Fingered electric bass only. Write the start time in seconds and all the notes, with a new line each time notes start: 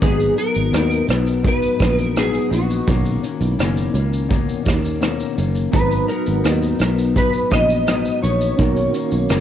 0.03 G#1
0.56 G#1
0.72 D#2
1.08 B1
1.80 A#1
2.51 A#1
2.88 B1
3.41 B1
3.59 F#1
3.94 C#2
4.67 D#2
5.38 F#1
5.74 G#1
6.28 G#1
6.45 D#2
6.80 B1
7.52 A#1
8.23 A#1
8.59 B1
9.12 B1
9.30 F#1